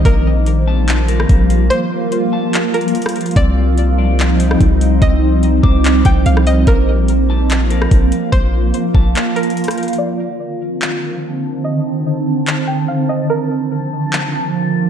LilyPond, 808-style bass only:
\new Staff \with { instrumentName = "808-style bass" } { \clef bass \time 4/4 \key c \dorian \tempo 4 = 145 bes,,2. bes,,4 | r1 | c,2. c,4 | c,4. c,4 c,8 c,4 |
bes,,2. bes,,8 r8 | bes,,4 r8 bes,,8 r2 | r1 | r1 |
r1 | }